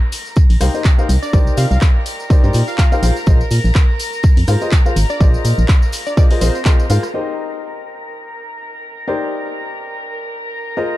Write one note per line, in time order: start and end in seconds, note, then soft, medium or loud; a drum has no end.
0.00 7.13 A#4 medium
0.00 7.13 A#5 medium
0.12 open hi-hat loud
0.12 tambourine medium
0.25 tambourine soft
0.36 kick loud
0.36 tambourine medium
0.36 tambourine soft
0.50 0.57 A#1 medium
0.50 open hi-hat medium
0.50 tambourine soft
0.61 0.69 C2 medium
0.61 0.72 D#4 medium
0.61 0.72 G4 medium
0.61 0.72 A#4 medium
0.61 0.72 C5 medium
0.61 0.72 F5 medium
0.61 cross-stick medium
0.61 open hi-hat loud
0.61 tambourine medium
0.74 0.83 D#4 medium
0.74 0.83 G4 medium
0.74 0.83 A#4 medium
0.74 0.83 C5 medium
0.74 0.83 D#5 medium
0.74 tambourine soft
0.84 kick loud
0.84 clap loud
0.84 tambourine soft
0.98 1.07 D#4 medium
0.98 1.07 G4 medium
0.98 1.07 A#4 medium
0.98 1.07 C5 medium
0.98 1.07 F5 medium
0.98 tambourine soft
1.09 1.18 C2 loud
1.09 open hi-hat loud
1.09 tambourine medium
1.23 1.39 D5 medium
1.23 tambourine soft
1.33 1.50 C2 medium
1.33 2.28 D#4 medium
1.33 2.28 G4 medium
1.33 2.28 A#4 medium
1.33 2.28 C5 medium
1.33 2.28 D5 medium
1.33 kick loud
1.33 tambourine soft
1.47 tambourine soft
1.57 1.66 C3 medium
1.57 1.66 F5 medium
1.57 open hi-hat loud
1.57 tambourine medium
1.71 1.78 C2 loud
1.71 1.78 F5 medium
1.71 tambourine soft
1.81 kick loud
1.81 cross-stick medium
1.81 clap loud
1.81 tambourine soft
2.06 open hi-hat loud
2.06 tambourine medium
2.20 tambourine soft
2.30 2.42 D#4 medium
2.30 2.42 G4 medium
2.30 2.41 A#4 medium
2.30 2.42 C5 medium
2.30 2.42 D5 loud
2.30 kick loud
2.30 tambourine medium
2.30 tambourine soft
2.44 2.50 G2 medium
2.44 2.59 D#4 medium
2.44 2.59 G4 medium
2.44 2.59 A#4 medium
2.44 2.59 C5 medium
2.44 2.59 D5 loud
2.44 tambourine soft
2.53 2.63 A#2 medium
2.53 open hi-hat loud
2.53 tambourine medium
2.67 3.08 F5 loud
2.67 tambourine soft
2.78 kick loud
2.78 clap loud
2.78 tambourine medium
2.78 tambourine soft
2.92 3.01 D#4 medium
2.92 3.01 G4 medium
2.92 3.01 A#4 medium
2.92 3.01 C5 medium
2.92 3.01 F5 loud
2.92 tambourine soft
3.03 3.11 A#1 loud
3.03 3.14 F4 medium
3.03 3.14 G#4 medium
3.03 3.14 A#4 medium
3.03 3.14 C5 medium
3.03 3.14 F5 medium
3.03 open hi-hat loud
3.03 tambourine medium
3.17 tambourine soft
3.26 3.43 A#1 medium
3.26 3.38 F4 medium
3.26 3.38 G#4 medium
3.26 3.38 A#4 medium
3.26 3.38 C5 medium
3.26 3.38 D#5 medium
3.26 kick loud
3.26 tambourine soft
3.41 tambourine soft
3.51 3.60 A#2 medium
3.51 open hi-hat loud
3.51 tambourine medium
3.64 3.71 A#1 loud
3.64 tambourine soft
3.75 kick loud
3.75 cross-stick medium
3.75 clap loud
3.75 tambourine medium
3.75 tambourine soft
3.99 open hi-hat loud
3.99 tambourine medium
4.13 tambourine soft
4.23 kick loud
4.23 tambourine medium
4.23 tambourine soft
4.37 4.44 F2 medium
4.37 open hi-hat medium
4.37 tambourine soft
4.47 4.56 G#2 medium
4.47 4.59 F4 medium
4.47 4.59 G#4 medium
4.47 4.59 A#4 medium
4.47 4.59 C5 medium
4.47 4.59 F5 medium
4.47 cross-stick medium
4.47 open hi-hat loud
4.47 tambourine medium
4.61 4.70 F4 medium
4.61 4.70 G#4 medium
4.61 4.70 A#4 medium
4.61 4.70 C5 medium
4.61 4.70 D#5 medium
4.61 tambourine soft
4.71 kick loud
4.71 clap loud
4.71 tambourine soft
4.86 4.95 F4 medium
4.86 4.95 G#4 medium
4.86 4.95 A#4 medium
4.86 4.95 C5 medium
4.86 4.95 F5 medium
4.86 tambourine soft
4.96 5.05 G#1 loud
4.96 open hi-hat loud
4.96 tambourine medium
5.09 5.28 D5 medium
5.09 tambourine soft
5.20 5.37 A#1 loud
5.20 6.15 F4 medium
5.20 6.15 G#4 medium
5.20 6.15 A#4 medium
5.20 6.15 C5 medium
5.20 6.15 D#5 medium
5.20 kick loud
5.20 tambourine soft
5.34 tambourine soft
5.45 5.53 A#2 medium
5.45 open hi-hat loud
5.45 tambourine medium
5.58 5.65 A#1 loud
5.58 tambourine soft
5.68 kick loud
5.68 cross-stick medium
5.68 clap loud
5.68 tambourine medium
5.68 tambourine soft
5.82 tambourine soft
5.92 open hi-hat loud
5.92 tambourine medium
6.06 6.13 D5 medium
6.06 tambourine soft
6.17 6.29 F4 medium
6.17 6.29 G#4 medium
6.17 6.29 A#4 medium
6.17 6.29 C5 medium
6.17 6.26 D5 medium
6.17 6.29 D#5 loud
6.17 kick loud
6.17 tambourine soft
6.31 6.39 F4 medium
6.31 6.39 G#4 medium
6.31 6.39 A#4 medium
6.31 6.39 C5 medium
6.31 6.39 D#5 loud
6.31 open hi-hat medium
6.31 tambourine soft
6.41 6.50 A#1 medium
6.41 6.53 F4 medium
6.41 6.53 G#4 medium
6.41 6.53 A#4 medium
6.41 6.53 C5 medium
6.41 6.90 C5 medium
6.41 6.53 D#5 loud
6.41 open hi-hat loud
6.41 tambourine medium
6.55 tambourine soft
6.65 6.83 F4 medium
6.65 6.83 G#4 medium
6.65 6.83 A#4 medium
6.65 6.83 C5 medium
6.65 6.83 D#5 medium
6.65 kick loud
6.65 clap loud
6.65 tambourine soft
6.79 tambourine soft
6.90 6.98 G#2 loud
6.90 7.01 F4 medium
6.90 7.01 G#4 medium
6.90 7.01 A#4 medium
6.90 7.01 C5 medium
6.90 7.01 F5 loud
6.90 open hi-hat loud
6.90 tambourine medium
7.03 cross-stick medium
7.03 tambourine soft
7.14 9.05 D#4 medium
7.14 9.05 G4 medium
7.14 9.05 A#4 medium
7.14 10.97 A#4 medium
7.14 9.05 C5 medium
7.14 9.05 D#5 medium
7.14 10.97 A#5 medium
9.08 10.74 D#4 medium
9.08 10.74 G4 medium
9.08 10.74 A#4 medium
9.08 10.74 C5 medium
9.08 10.74 D5 medium
10.77 10.97 F4 medium
10.77 10.97 G#4 medium
10.77 10.97 A#4 medium
10.77 10.97 C5 medium
10.77 10.97 D#5 medium